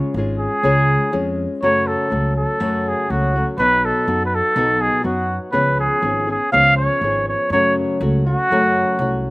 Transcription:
Already playing: nylon-string guitar C#3 G#3 C#4 F4 G#4
0.14 upright bass G#1, nylon-string guitar G#3 C#4 F4
0.18 nylon-string guitar G#4
0.38 trumpet G#4
0.63 upright bass C#2, nylon-string guitar C#3 G#3 C#4 F4 G#4
1.12 upright bass F2, nylon-string guitar G#3 C#4 F4 G#4
1.62 upright bass F#2, nylon-string guitar F#2 C#3 F#3 A3 C#4 F#4, trumpet C#5
1.87 trumpet A4
2.10 upright bass C#2, nylon-string guitar F#3 A3 C#4 F#4
2.37 trumpet A4
2.60 nylon-string guitar F#2 C#3 F#3 A3 C#4 F#4, upright bass F#2
2.89 trumpet G#4
3.10 upright bass C#2, nylon-string guitar F#3 A3 C#4 F#4, trumpet F#4
3.36 nylon-string guitar F#3 A3 C#4 F#4
3.58 upright bass B1, nylon-string guitar B2 F#3 B3 D#4 F#4, trumpet B4
3.85 trumpet A4
4.08 upright bass F#2, nylon-string guitar F#3 B3 D#4 F#4
4.26 trumpet B4
4.35 trumpet A4
4.56 upright bass B1, nylon-string guitar B2 F#3 B3 D#4 F#4
4.81 trumpet G#4
5.03 upright bass F#2, nylon-string guitar F#3 B3 D#4 F#4, trumpet F#4
5.52 upright bass C#2, nylon-string guitar C#3 F3 B3 C#4 G#4, trumpet B4
5.80 trumpet G#4
6.02 upright bass G#1, nylon-string guitar F3 B3 C#4 G#4
6.27 nylon-string guitar B3 C#4 G#4
6.31 trumpet G#4
6.52 upright bass C#2, nylon-string guitar C#3 F3 B3 C#4 G#4, trumpet F5
6.77 trumpet C#5
7.01 upright bass G#1, nylon-string guitar F3 B3 C#4 G#4
7.28 trumpet C#5
7.50 upright bass F#2, nylon-string guitar F#2 C#3 F#3 A3 C#4 F#4, trumpet C#5
8.01 upright bass C#2, nylon-string guitar F#3 A3 C#4 F#4
8.26 nylon-string guitar F#3 A3 C#4 F#4, trumpet F#4
8.51 upright bass F#2, nylon-string guitar F#2 C#3 F#3 A3 C#4 F#4
8.99 upright bass C2, nylon-string guitar F#3 A3 C#4 F#4

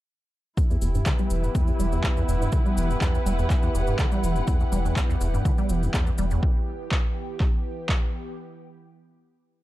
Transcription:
0.57 acid bass E2, analog synth pad E3 B3 G4, string section E4, kick, cabasa
0.70 acid bass E2, cabasa
0.82 sub bass E1, acid bass E2, cabasa
0.95 acid bass G2, cabasa
1.06 acid bass D3, kick, clap, cabasa
1.11 string section B4
1.19 acid bass G3, cabasa
1.30 sub bass E1, acid bass E3, cabasa
1.44 acid bass E2, cabasa
1.55 acid bass E2, kick, cabasa
1.67 acid bass E2, cabasa
1.79 sub bass E1, acid bass G3, string section F#5, cabasa
1.92 acid bass E2, cabasa
2.04 acid bass E2, kick, clap, cabasa
2.17 acid bass E2, cabasa
2.28 sub bass E1, acid bass E2, cabasa
2.41 acid bass G2, cabasa
2.52 acid bass D3, kick, cabasa
2.66 acid bass G3, cabasa
2.77 sub bass E1, acid bass E3, cabasa
2.90 acid bass E2, cabasa
3.01 acid bass E2, kick, clap, cabasa
3.14 acid bass E2, cabasa
3.26 sub bass E1, acid bass G3, cabasa
3.39 acid bass E2, cabasa
3.50 acid bass E2, kick, clap, cabasa
3.63 acid bass E2, cabasa
3.74 sub bass E1, acid bass E2, cabasa
3.87 acid bass G2, cabasa
3.99 acid bass D3, kick, clap, cabasa
4.12 acid bass G3, cabasa
4.23 sub bass E1, acid bass E3, cabasa
4.36 acid bass E2, cabasa
4.47 acid bass E2, kick, cabasa
4.60 acid bass E2, cabasa
4.72 sub bass E1, acid bass G3, cabasa
4.85 acid bass E2, cabasa
4.96 acid bass E2, kick, clap, cabasa
5.09 acid bass E2, cabasa
5.21 sub bass E1, acid bass E2, cabasa
5.34 acid bass G2, cabasa
5.45 acid bass D3, kick, cabasa
5.58 acid bass G3, cabasa
5.69 sub bass E1, acid bass E3, cabasa
5.83 acid bass E2, cabasa
5.94 acid bass E2, kick, clap, cabasa
6.07 acid bass E2, cabasa
6.18 sub bass E1, acid bass G3, cabasa
6.31 acid bass E2, cabasa
6.43 kick
6.92 kick, clap
7.40 kick, clap
7.89 kick, clap

